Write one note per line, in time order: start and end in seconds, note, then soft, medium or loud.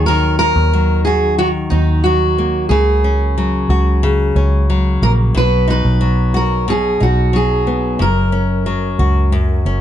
0.00 0.52 D#2 medium
0.00 0.73 F#3 medium
0.00 1.06 F#4 medium
0.06 1.38 D#3 medium
0.06 0.38 A#4 loud
0.39 1.70 D#4 medium
0.39 1.04 A#4 loud
0.56 1.67 D#2 medium
0.73 2.05 F#3 medium
1.05 3.70 F#4 medium
1.05 1.36 G#4 medium
1.38 2.71 D#3 medium
1.38 1.47 F#4 medium
1.70 2.67 D#2 medium
1.70 2.05 D#4 medium
1.70 2.77 D#4 medium
2.04 3.37 F#3 medium
2.04 2.69 F#4 medium
2.38 5.02 A#3 medium
2.69 3.65 C#2 loud
2.69 4.02 C#3 medium
2.69 4.64 G#4 medium
3.04 4.35 C#4 medium
3.38 4.69 F#3 medium
3.69 4.31 C#2 medium
3.69 6.34 F#4 medium
4.03 5.34 C#3 medium
4.36 4.98 C#2 medium
4.36 5.42 C#4 medium
4.70 6.00 F#3 medium
5.02 5.32 A#1 medium
5.02 5.42 A#3 medium
5.02 5.12 A#4 loud
5.35 5.81 B1 loud
5.35 6.67 B2 medium
5.35 5.67 B4 loud
5.68 6.99 D#4 medium
5.68 6.36 B4 medium
5.85 6.96 B1 loud
6.01 7.33 F#3 medium
6.34 8.99 F#4 medium
6.34 6.66 A#4 medium
6.68 8.00 B2 medium
6.68 7.02 G#4 medium
7.00 7.96 B1 medium
7.00 8.06 D#4 medium
7.00 7.35 F#4 medium
7.33 8.66 F#3 medium
7.33 8.01 G#4 medium
7.67 8.06 B3 medium
7.99 8.95 F#1 loud
7.99 9.31 F#2 medium
7.99 9.81 A#4 medium
8.32 9.64 C#4 medium
8.66 9.81 F#3 medium
8.99 9.61 C#2 medium
8.99 9.81 F#4 medium
9.32 9.81 F#2 medium
9.65 9.81 F#1 medium
9.65 9.81 C#4 medium